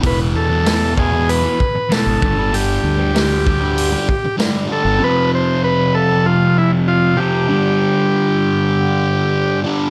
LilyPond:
<<
  \new Staff \with { instrumentName = "Transistor combo organ" } { \time 4/4 \key g \lydian \tempo 4 = 97 b'8 a'4 gis'8 b'4 a'4 | g'2. r8 a'8 | b'8 c''8 b'8 a'8 f'8 e'8 f'8 g'8~ | g'2.~ g'8 r8 | }
  \new Staff \with { instrumentName = "Distorted electric guitar" } { \clef bass \time 4/4 \key g \lydian <e, b, e>8. <b, e>16 <e, b, e>8 <e, b, e>16 <b, e>8 <b, e>8. <e, b, e>8 <g, d g>16 <d g>16 | <g, d g>8. <d g>16 <g, d g>8 <g, d g>16 <d g>8 <d g>8. <g, d g>8 <g, d g>16 <d g>16 | <f, c f>2.~ <f, c f>8 <f, c f>8 | <g, d g>2.~ <g, d g>8 <g, d g>8 | }
  \new Staff \with { instrumentName = "Fingered electric bass" } { \clef bass \time 4/4 \key g \lydian e,,8 e,2 r8. gis,,16 g,,8~ | g,,8 d,2 r4 r16 g,,16 | r1 | r1 | }
  \new DrumStaff \with { instrumentName = "Drums" } \drummode { \time 4/4 <hho bd>4 <hho sn>8 bd8 hho8 bd8 <hho sn>8 bd8 | hho4 <hho sn>8 bd8 hho8 bd8 <hho sn>4 | r4 r4 r4 r4 | r4 r4 r4 r4 | }
>>